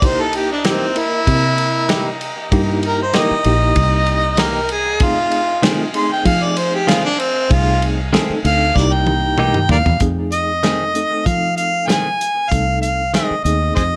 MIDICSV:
0, 0, Header, 1, 8, 480
1, 0, Start_track
1, 0, Tempo, 624350
1, 16, Time_signature, 4, 2, 24, 8
1, 10734, End_track
2, 0, Start_track
2, 0, Title_t, "Horn section"
2, 0, Program_c, 0, 61
2, 0, Note_on_c, 0, 75, 68
2, 17, Note_on_c, 0, 82, 82
2, 22, Note_on_c, 0, 79, 66
2, 3826, Note_off_c, 0, 82, 0
2, 3829, Note_off_c, 0, 79, 0
2, 3856, Note_on_c, 0, 77, 85
2, 3857, Note_on_c, 0, 80, 75
2, 6705, Note_off_c, 0, 77, 0
2, 6706, Note_off_c, 0, 80, 0
2, 6739, Note_on_c, 0, 79, 69
2, 6741, Note_on_c, 0, 82, 87
2, 7663, Note_off_c, 0, 75, 0
2, 7687, Note_off_c, 0, 79, 0
2, 7688, Note_off_c, 0, 82, 0
2, 10734, End_track
3, 0, Start_track
3, 0, Title_t, "Harmonica"
3, 0, Program_c, 1, 22
3, 40, Note_on_c, 1, 72, 93
3, 160, Note_on_c, 1, 69, 87
3, 172, Note_off_c, 1, 72, 0
3, 273, Note_on_c, 1, 67, 89
3, 285, Note_off_c, 1, 69, 0
3, 386, Note_off_c, 1, 67, 0
3, 400, Note_on_c, 1, 62, 71
3, 497, Note_off_c, 1, 62, 0
3, 515, Note_on_c, 1, 60, 83
3, 755, Note_on_c, 1, 64, 102
3, 766, Note_off_c, 1, 60, 0
3, 1678, Note_off_c, 1, 64, 0
3, 2203, Note_on_c, 1, 70, 86
3, 2311, Note_off_c, 1, 70, 0
3, 2324, Note_on_c, 1, 72, 81
3, 2435, Note_on_c, 1, 75, 83
3, 2447, Note_off_c, 1, 72, 0
3, 3389, Note_on_c, 1, 70, 93
3, 3401, Note_off_c, 1, 75, 0
3, 3616, Note_off_c, 1, 70, 0
3, 3629, Note_on_c, 1, 68, 94
3, 3868, Note_on_c, 1, 65, 113
3, 3880, Note_off_c, 1, 68, 0
3, 4328, Note_off_c, 1, 65, 0
3, 4588, Note_on_c, 1, 84, 103
3, 4702, Note_off_c, 1, 84, 0
3, 4710, Note_on_c, 1, 79, 90
3, 4808, Note_off_c, 1, 79, 0
3, 4813, Note_on_c, 1, 77, 92
3, 4947, Note_on_c, 1, 74, 84
3, 4958, Note_off_c, 1, 77, 0
3, 5055, Note_on_c, 1, 72, 87
3, 5067, Note_off_c, 1, 74, 0
3, 5185, Note_on_c, 1, 67, 99
3, 5197, Note_off_c, 1, 72, 0
3, 5294, Note_on_c, 1, 65, 87
3, 5305, Note_off_c, 1, 67, 0
3, 5414, Note_off_c, 1, 65, 0
3, 5420, Note_on_c, 1, 62, 94
3, 5531, Note_on_c, 1, 60, 96
3, 5543, Note_off_c, 1, 62, 0
3, 5777, Note_on_c, 1, 65, 116
3, 5788, Note_off_c, 1, 60, 0
3, 6008, Note_off_c, 1, 65, 0
3, 6507, Note_on_c, 1, 77, 104
3, 6744, Note_on_c, 1, 74, 94
3, 6755, Note_off_c, 1, 77, 0
3, 6866, Note_on_c, 1, 79, 84
3, 6878, Note_off_c, 1, 74, 0
3, 7438, Note_off_c, 1, 79, 0
3, 7467, Note_on_c, 1, 70, 69
3, 7467, Note_on_c, 1, 74, 69
3, 7467, Note_on_c, 1, 77, 98
3, 7516, Note_off_c, 1, 70, 0
3, 7516, Note_off_c, 1, 74, 0
3, 7694, Note_off_c, 1, 77, 0
3, 7936, Note_on_c, 1, 75, 101
3, 8655, Note_on_c, 1, 77, 98
3, 8666, Note_off_c, 1, 75, 0
3, 8887, Note_off_c, 1, 77, 0
3, 8892, Note_on_c, 1, 77, 97
3, 9128, Note_on_c, 1, 80, 101
3, 9140, Note_off_c, 1, 77, 0
3, 9608, Note_on_c, 1, 77, 104
3, 9619, Note_off_c, 1, 80, 0
3, 9847, Note_off_c, 1, 77, 0
3, 9852, Note_on_c, 1, 77, 92
3, 10097, Note_on_c, 1, 75, 87
3, 10109, Note_off_c, 1, 77, 0
3, 10327, Note_off_c, 1, 75, 0
3, 10332, Note_on_c, 1, 75, 86
3, 10558, Note_off_c, 1, 75, 0
3, 10572, Note_on_c, 1, 68, 68
3, 10572, Note_on_c, 1, 72, 68
3, 10572, Note_on_c, 1, 75, 97
3, 10628, Note_off_c, 1, 68, 0
3, 10631, Note_off_c, 1, 72, 0
3, 10734, Note_off_c, 1, 75, 0
3, 10734, End_track
4, 0, Start_track
4, 0, Title_t, "Tine electric piano"
4, 0, Program_c, 2, 4
4, 17, Note_on_c, 2, 58, 73
4, 19, Note_on_c, 2, 64, 65
4, 21, Note_on_c, 2, 63, 65
4, 27, Note_on_c, 2, 67, 82
4, 394, Note_off_c, 2, 58, 0
4, 395, Note_off_c, 2, 64, 0
4, 396, Note_off_c, 2, 63, 0
4, 399, Note_off_c, 2, 67, 0
4, 498, Note_on_c, 2, 58, 66
4, 499, Note_on_c, 2, 63, 65
4, 500, Note_on_c, 2, 64, 61
4, 504, Note_on_c, 2, 67, 75
4, 686, Note_off_c, 2, 58, 0
4, 686, Note_off_c, 2, 63, 0
4, 687, Note_off_c, 2, 64, 0
4, 689, Note_off_c, 2, 67, 0
4, 736, Note_on_c, 2, 58, 70
4, 737, Note_on_c, 2, 75, 60
4, 741, Note_on_c, 2, 64, 69
4, 743, Note_on_c, 2, 70, 74
4, 1475, Note_off_c, 2, 58, 0
4, 1475, Note_off_c, 2, 75, 0
4, 1477, Note_off_c, 2, 64, 0
4, 1478, Note_off_c, 2, 70, 0
4, 1934, Note_on_c, 2, 58, 85
4, 1936, Note_on_c, 2, 63, 86
4, 1938, Note_on_c, 2, 64, 76
4, 1940, Note_on_c, 2, 67, 102
4, 2312, Note_off_c, 2, 58, 0
4, 2314, Note_off_c, 2, 63, 0
4, 2314, Note_off_c, 2, 64, 0
4, 2315, Note_off_c, 2, 67, 0
4, 2418, Note_on_c, 2, 63, 62
4, 2419, Note_on_c, 2, 58, 68
4, 2422, Note_on_c, 2, 64, 64
4, 2426, Note_on_c, 2, 70, 74
4, 2606, Note_off_c, 2, 63, 0
4, 2607, Note_off_c, 2, 58, 0
4, 2608, Note_off_c, 2, 64, 0
4, 2610, Note_off_c, 2, 70, 0
4, 2653, Note_on_c, 2, 58, 68
4, 2655, Note_on_c, 2, 63, 65
4, 2656, Note_on_c, 2, 64, 69
4, 2661, Note_on_c, 2, 67, 84
4, 3393, Note_off_c, 2, 58, 0
4, 3394, Note_off_c, 2, 63, 0
4, 3394, Note_off_c, 2, 64, 0
4, 3397, Note_off_c, 2, 67, 0
4, 3848, Note_on_c, 2, 57, 77
4, 3852, Note_on_c, 2, 60, 71
4, 3855, Note_on_c, 2, 63, 69
4, 3858, Note_on_c, 2, 68, 86
4, 4229, Note_off_c, 2, 57, 0
4, 4231, Note_off_c, 2, 60, 0
4, 4232, Note_off_c, 2, 63, 0
4, 4234, Note_off_c, 2, 68, 0
4, 4327, Note_on_c, 2, 57, 69
4, 4329, Note_on_c, 2, 60, 65
4, 4333, Note_on_c, 2, 63, 65
4, 4334, Note_on_c, 2, 65, 80
4, 4520, Note_off_c, 2, 57, 0
4, 4521, Note_off_c, 2, 60, 0
4, 4523, Note_off_c, 2, 63, 0
4, 4523, Note_off_c, 2, 65, 0
4, 4565, Note_on_c, 2, 57, 74
4, 4569, Note_on_c, 2, 60, 64
4, 4574, Note_on_c, 2, 63, 69
4, 4575, Note_on_c, 2, 68, 81
4, 5308, Note_off_c, 2, 57, 0
4, 5310, Note_off_c, 2, 60, 0
4, 5312, Note_off_c, 2, 63, 0
4, 5313, Note_off_c, 2, 68, 0
4, 5767, Note_on_c, 2, 57, 77
4, 5772, Note_on_c, 2, 60, 74
4, 5775, Note_on_c, 2, 63, 67
4, 5777, Note_on_c, 2, 68, 83
4, 6148, Note_off_c, 2, 57, 0
4, 6150, Note_off_c, 2, 60, 0
4, 6151, Note_off_c, 2, 63, 0
4, 6153, Note_off_c, 2, 68, 0
4, 6248, Note_on_c, 2, 57, 81
4, 6251, Note_on_c, 2, 60, 77
4, 6253, Note_on_c, 2, 63, 77
4, 6259, Note_on_c, 2, 69, 96
4, 6440, Note_off_c, 2, 57, 0
4, 6441, Note_off_c, 2, 60, 0
4, 6442, Note_off_c, 2, 63, 0
4, 6445, Note_off_c, 2, 69, 0
4, 6491, Note_on_c, 2, 57, 78
4, 6499, Note_on_c, 2, 60, 68
4, 6499, Note_on_c, 2, 63, 66
4, 6501, Note_on_c, 2, 69, 82
4, 6726, Note_off_c, 2, 63, 0
4, 6733, Note_off_c, 2, 57, 0
4, 6735, Note_on_c, 2, 63, 79
4, 6736, Note_off_c, 2, 60, 0
4, 6737, Note_off_c, 2, 69, 0
4, 6737, Note_on_c, 2, 58, 82
4, 6743, Note_on_c, 2, 64, 73
4, 6744, Note_on_c, 2, 67, 88
4, 7506, Note_off_c, 2, 63, 0
4, 7507, Note_off_c, 2, 58, 0
4, 7510, Note_off_c, 2, 64, 0
4, 7511, Note_off_c, 2, 67, 0
4, 7695, Note_on_c, 2, 57, 72
4, 7697, Note_on_c, 2, 60, 64
4, 7702, Note_on_c, 2, 68, 77
4, 7703, Note_on_c, 2, 63, 60
4, 8072, Note_off_c, 2, 57, 0
4, 8073, Note_off_c, 2, 60, 0
4, 8075, Note_off_c, 2, 63, 0
4, 8075, Note_off_c, 2, 68, 0
4, 8175, Note_on_c, 2, 57, 68
4, 8177, Note_on_c, 2, 60, 61
4, 8182, Note_on_c, 2, 63, 58
4, 8182, Note_on_c, 2, 69, 71
4, 8363, Note_off_c, 2, 57, 0
4, 8364, Note_off_c, 2, 60, 0
4, 8367, Note_off_c, 2, 63, 0
4, 8367, Note_off_c, 2, 69, 0
4, 8418, Note_on_c, 2, 57, 68
4, 8421, Note_on_c, 2, 60, 62
4, 8423, Note_on_c, 2, 63, 61
4, 8428, Note_on_c, 2, 69, 71
4, 9155, Note_off_c, 2, 57, 0
4, 9157, Note_off_c, 2, 60, 0
4, 9157, Note_off_c, 2, 63, 0
4, 9160, Note_off_c, 2, 69, 0
4, 9618, Note_on_c, 2, 57, 74
4, 9621, Note_on_c, 2, 60, 63
4, 9624, Note_on_c, 2, 63, 65
4, 9627, Note_on_c, 2, 69, 76
4, 9994, Note_off_c, 2, 57, 0
4, 9996, Note_off_c, 2, 60, 0
4, 9997, Note_off_c, 2, 63, 0
4, 9999, Note_off_c, 2, 69, 0
4, 10101, Note_on_c, 2, 57, 65
4, 10106, Note_on_c, 2, 60, 58
4, 10108, Note_on_c, 2, 63, 60
4, 10111, Note_on_c, 2, 68, 77
4, 10288, Note_off_c, 2, 57, 0
4, 10290, Note_off_c, 2, 60, 0
4, 10291, Note_off_c, 2, 63, 0
4, 10293, Note_off_c, 2, 68, 0
4, 10346, Note_on_c, 2, 57, 71
4, 10347, Note_on_c, 2, 60, 63
4, 10351, Note_on_c, 2, 63, 66
4, 10351, Note_on_c, 2, 68, 70
4, 10734, Note_off_c, 2, 57, 0
4, 10734, Note_off_c, 2, 60, 0
4, 10734, Note_off_c, 2, 63, 0
4, 10734, Note_off_c, 2, 68, 0
4, 10734, End_track
5, 0, Start_track
5, 0, Title_t, "Clean electric guitar"
5, 0, Program_c, 3, 27
5, 498, Note_on_c, 3, 52, 87
5, 501, Note_on_c, 3, 58, 84
5, 504, Note_on_c, 3, 63, 81
5, 508, Note_on_c, 3, 67, 92
5, 649, Note_off_c, 3, 52, 0
5, 650, Note_off_c, 3, 58, 0
5, 652, Note_off_c, 3, 63, 0
5, 654, Note_off_c, 3, 67, 0
5, 1452, Note_on_c, 3, 52, 79
5, 1456, Note_on_c, 3, 58, 85
5, 1460, Note_on_c, 3, 63, 89
5, 1461, Note_on_c, 3, 67, 102
5, 1606, Note_off_c, 3, 52, 0
5, 1608, Note_off_c, 3, 58, 0
5, 1610, Note_off_c, 3, 63, 0
5, 1610, Note_off_c, 3, 67, 0
5, 2411, Note_on_c, 3, 52, 80
5, 2414, Note_on_c, 3, 58, 84
5, 2419, Note_on_c, 3, 63, 85
5, 2421, Note_on_c, 3, 67, 90
5, 2565, Note_off_c, 3, 52, 0
5, 2567, Note_off_c, 3, 58, 0
5, 2569, Note_off_c, 3, 63, 0
5, 2570, Note_off_c, 3, 67, 0
5, 3369, Note_on_c, 3, 52, 76
5, 3374, Note_on_c, 3, 58, 81
5, 3377, Note_on_c, 3, 63, 86
5, 3380, Note_on_c, 3, 67, 84
5, 3524, Note_off_c, 3, 52, 0
5, 3527, Note_off_c, 3, 58, 0
5, 3528, Note_off_c, 3, 63, 0
5, 3529, Note_off_c, 3, 67, 0
5, 4325, Note_on_c, 3, 51, 89
5, 4331, Note_on_c, 3, 57, 91
5, 4333, Note_on_c, 3, 60, 91
5, 4336, Note_on_c, 3, 68, 88
5, 4482, Note_off_c, 3, 51, 0
5, 4485, Note_off_c, 3, 57, 0
5, 4486, Note_off_c, 3, 60, 0
5, 4487, Note_off_c, 3, 68, 0
5, 5284, Note_on_c, 3, 51, 86
5, 5288, Note_on_c, 3, 57, 78
5, 5292, Note_on_c, 3, 60, 89
5, 5294, Note_on_c, 3, 68, 91
5, 5441, Note_off_c, 3, 51, 0
5, 5443, Note_off_c, 3, 57, 0
5, 5445, Note_off_c, 3, 60, 0
5, 5446, Note_off_c, 3, 68, 0
5, 6248, Note_on_c, 3, 51, 94
5, 6251, Note_on_c, 3, 57, 95
5, 6256, Note_on_c, 3, 60, 101
5, 6259, Note_on_c, 3, 68, 101
5, 6403, Note_off_c, 3, 51, 0
5, 6404, Note_off_c, 3, 57, 0
5, 6406, Note_off_c, 3, 60, 0
5, 6408, Note_off_c, 3, 68, 0
5, 7214, Note_on_c, 3, 52, 84
5, 7217, Note_on_c, 3, 58, 76
5, 7222, Note_on_c, 3, 63, 82
5, 7225, Note_on_c, 3, 67, 92
5, 7365, Note_off_c, 3, 52, 0
5, 7367, Note_off_c, 3, 58, 0
5, 7369, Note_off_c, 3, 63, 0
5, 7371, Note_off_c, 3, 67, 0
5, 8174, Note_on_c, 3, 51, 84
5, 8178, Note_on_c, 3, 57, 77
5, 8183, Note_on_c, 3, 60, 79
5, 8186, Note_on_c, 3, 68, 77
5, 8325, Note_off_c, 3, 51, 0
5, 8328, Note_off_c, 3, 57, 0
5, 8330, Note_off_c, 3, 60, 0
5, 8331, Note_off_c, 3, 68, 0
5, 9132, Note_on_c, 3, 51, 75
5, 9136, Note_on_c, 3, 57, 73
5, 9140, Note_on_c, 3, 60, 73
5, 9142, Note_on_c, 3, 68, 74
5, 9285, Note_off_c, 3, 51, 0
5, 9287, Note_off_c, 3, 57, 0
5, 9289, Note_off_c, 3, 60, 0
5, 9290, Note_off_c, 3, 68, 0
5, 10100, Note_on_c, 3, 51, 72
5, 10105, Note_on_c, 3, 57, 81
5, 10110, Note_on_c, 3, 60, 78
5, 10114, Note_on_c, 3, 68, 86
5, 10250, Note_off_c, 3, 51, 0
5, 10253, Note_off_c, 3, 57, 0
5, 10255, Note_off_c, 3, 60, 0
5, 10257, Note_off_c, 3, 68, 0
5, 10734, End_track
6, 0, Start_track
6, 0, Title_t, "Fingered electric bass"
6, 0, Program_c, 4, 33
6, 15, Note_on_c, 4, 36, 95
6, 813, Note_off_c, 4, 36, 0
6, 980, Note_on_c, 4, 48, 87
6, 1776, Note_off_c, 4, 48, 0
6, 1936, Note_on_c, 4, 43, 88
6, 2442, Note_off_c, 4, 43, 0
6, 2657, Note_on_c, 4, 34, 90
6, 2856, Note_off_c, 4, 34, 0
6, 2889, Note_on_c, 4, 36, 99
6, 3846, Note_off_c, 4, 36, 0
6, 3846, Note_on_c, 4, 41, 104
6, 4647, Note_off_c, 4, 41, 0
6, 4808, Note_on_c, 4, 53, 95
6, 5608, Note_off_c, 4, 53, 0
6, 5773, Note_on_c, 4, 36, 96
6, 6279, Note_off_c, 4, 36, 0
6, 6493, Note_on_c, 4, 38, 91
6, 6693, Note_off_c, 4, 38, 0
6, 6731, Note_on_c, 4, 36, 90
6, 7330, Note_off_c, 4, 36, 0
6, 7452, Note_on_c, 4, 39, 77
6, 7569, Note_off_c, 4, 39, 0
6, 7580, Note_on_c, 4, 40, 82
6, 7681, Note_off_c, 4, 40, 0
6, 7691, Note_on_c, 4, 41, 93
6, 8490, Note_off_c, 4, 41, 0
6, 8660, Note_on_c, 4, 53, 86
6, 9456, Note_off_c, 4, 53, 0
6, 9620, Note_on_c, 4, 36, 88
6, 10125, Note_off_c, 4, 36, 0
6, 10340, Note_on_c, 4, 39, 84
6, 10538, Note_off_c, 4, 39, 0
6, 10586, Note_on_c, 4, 41, 85
6, 10734, Note_off_c, 4, 41, 0
6, 10734, End_track
7, 0, Start_track
7, 0, Title_t, "Muted fingered electric bass strokes"
7, 2546, Note_on_c, 9, 29, 39
7, 2623, Note_off_c, 9, 29, 0
7, 6380, Note_on_c, 9, 29, 39
7, 6457, Note_off_c, 9, 29, 0
7, 10232, Note_on_c, 9, 29, 35
7, 10308, Note_off_c, 9, 29, 0
7, 10734, End_track
8, 0, Start_track
8, 0, Title_t, "Drums"
8, 17, Note_on_c, 9, 36, 114
8, 19, Note_on_c, 9, 51, 86
8, 94, Note_off_c, 9, 36, 0
8, 96, Note_off_c, 9, 51, 0
8, 253, Note_on_c, 9, 51, 66
8, 330, Note_off_c, 9, 51, 0
8, 496, Note_on_c, 9, 51, 86
8, 503, Note_on_c, 9, 38, 110
8, 573, Note_off_c, 9, 51, 0
8, 580, Note_off_c, 9, 38, 0
8, 736, Note_on_c, 9, 51, 69
8, 812, Note_off_c, 9, 51, 0
8, 978, Note_on_c, 9, 36, 85
8, 979, Note_on_c, 9, 51, 82
8, 1055, Note_off_c, 9, 36, 0
8, 1056, Note_off_c, 9, 51, 0
8, 1214, Note_on_c, 9, 51, 66
8, 1291, Note_off_c, 9, 51, 0
8, 1453, Note_on_c, 9, 51, 88
8, 1460, Note_on_c, 9, 38, 102
8, 1530, Note_off_c, 9, 51, 0
8, 1537, Note_off_c, 9, 38, 0
8, 1698, Note_on_c, 9, 51, 64
8, 1775, Note_off_c, 9, 51, 0
8, 1936, Note_on_c, 9, 51, 84
8, 1937, Note_on_c, 9, 36, 109
8, 2013, Note_off_c, 9, 51, 0
8, 2014, Note_off_c, 9, 36, 0
8, 2174, Note_on_c, 9, 51, 63
8, 2251, Note_off_c, 9, 51, 0
8, 2410, Note_on_c, 9, 51, 77
8, 2417, Note_on_c, 9, 38, 106
8, 2487, Note_off_c, 9, 51, 0
8, 2494, Note_off_c, 9, 38, 0
8, 2648, Note_on_c, 9, 51, 63
8, 2725, Note_off_c, 9, 51, 0
8, 2888, Note_on_c, 9, 51, 79
8, 2891, Note_on_c, 9, 36, 85
8, 2964, Note_off_c, 9, 51, 0
8, 2968, Note_off_c, 9, 36, 0
8, 3125, Note_on_c, 9, 51, 57
8, 3202, Note_off_c, 9, 51, 0
8, 3362, Note_on_c, 9, 51, 88
8, 3368, Note_on_c, 9, 38, 103
8, 3438, Note_off_c, 9, 51, 0
8, 3445, Note_off_c, 9, 38, 0
8, 3604, Note_on_c, 9, 51, 64
8, 3681, Note_off_c, 9, 51, 0
8, 3843, Note_on_c, 9, 51, 80
8, 3848, Note_on_c, 9, 36, 117
8, 3919, Note_off_c, 9, 51, 0
8, 3925, Note_off_c, 9, 36, 0
8, 4086, Note_on_c, 9, 51, 63
8, 4163, Note_off_c, 9, 51, 0
8, 4329, Note_on_c, 9, 51, 90
8, 4336, Note_on_c, 9, 38, 109
8, 4406, Note_off_c, 9, 51, 0
8, 4413, Note_off_c, 9, 38, 0
8, 4567, Note_on_c, 9, 51, 67
8, 4643, Note_off_c, 9, 51, 0
8, 4808, Note_on_c, 9, 51, 86
8, 4809, Note_on_c, 9, 36, 83
8, 4885, Note_off_c, 9, 51, 0
8, 4886, Note_off_c, 9, 36, 0
8, 5048, Note_on_c, 9, 51, 69
8, 5124, Note_off_c, 9, 51, 0
8, 5292, Note_on_c, 9, 51, 87
8, 5299, Note_on_c, 9, 38, 113
8, 5369, Note_off_c, 9, 51, 0
8, 5376, Note_off_c, 9, 38, 0
8, 5532, Note_on_c, 9, 51, 64
8, 5609, Note_off_c, 9, 51, 0
8, 5771, Note_on_c, 9, 36, 119
8, 5771, Note_on_c, 9, 51, 91
8, 5848, Note_off_c, 9, 36, 0
8, 5848, Note_off_c, 9, 51, 0
8, 6014, Note_on_c, 9, 51, 67
8, 6091, Note_off_c, 9, 51, 0
8, 6256, Note_on_c, 9, 51, 84
8, 6263, Note_on_c, 9, 38, 120
8, 6333, Note_off_c, 9, 51, 0
8, 6340, Note_off_c, 9, 38, 0
8, 6495, Note_on_c, 9, 51, 69
8, 6572, Note_off_c, 9, 51, 0
8, 6732, Note_on_c, 9, 36, 82
8, 6741, Note_on_c, 9, 38, 61
8, 6809, Note_off_c, 9, 36, 0
8, 6818, Note_off_c, 9, 38, 0
8, 6970, Note_on_c, 9, 48, 75
8, 7047, Note_off_c, 9, 48, 0
8, 7209, Note_on_c, 9, 47, 82
8, 7286, Note_off_c, 9, 47, 0
8, 7337, Note_on_c, 9, 45, 78
8, 7414, Note_off_c, 9, 45, 0
8, 7451, Note_on_c, 9, 43, 103
8, 7528, Note_off_c, 9, 43, 0
8, 7580, Note_on_c, 9, 43, 86
8, 7657, Note_off_c, 9, 43, 0
8, 7688, Note_on_c, 9, 42, 78
8, 7692, Note_on_c, 9, 36, 100
8, 7765, Note_off_c, 9, 42, 0
8, 7769, Note_off_c, 9, 36, 0
8, 7933, Note_on_c, 9, 42, 59
8, 8010, Note_off_c, 9, 42, 0
8, 8176, Note_on_c, 9, 42, 80
8, 8183, Note_on_c, 9, 38, 101
8, 8253, Note_off_c, 9, 42, 0
8, 8260, Note_off_c, 9, 38, 0
8, 8419, Note_on_c, 9, 42, 63
8, 8496, Note_off_c, 9, 42, 0
8, 8657, Note_on_c, 9, 36, 75
8, 8659, Note_on_c, 9, 42, 75
8, 8734, Note_off_c, 9, 36, 0
8, 8736, Note_off_c, 9, 42, 0
8, 8900, Note_on_c, 9, 42, 62
8, 8977, Note_off_c, 9, 42, 0
8, 9143, Note_on_c, 9, 42, 76
8, 9150, Note_on_c, 9, 38, 106
8, 9220, Note_off_c, 9, 42, 0
8, 9227, Note_off_c, 9, 38, 0
8, 9387, Note_on_c, 9, 42, 66
8, 9463, Note_off_c, 9, 42, 0
8, 9622, Note_on_c, 9, 36, 102
8, 9625, Note_on_c, 9, 42, 82
8, 9699, Note_off_c, 9, 36, 0
8, 9701, Note_off_c, 9, 42, 0
8, 9862, Note_on_c, 9, 42, 64
8, 9939, Note_off_c, 9, 42, 0
8, 10102, Note_on_c, 9, 42, 78
8, 10108, Note_on_c, 9, 38, 104
8, 10178, Note_off_c, 9, 42, 0
8, 10185, Note_off_c, 9, 38, 0
8, 10345, Note_on_c, 9, 42, 58
8, 10421, Note_off_c, 9, 42, 0
8, 10585, Note_on_c, 9, 36, 76
8, 10585, Note_on_c, 9, 42, 68
8, 10662, Note_off_c, 9, 36, 0
8, 10662, Note_off_c, 9, 42, 0
8, 10734, End_track
0, 0, End_of_file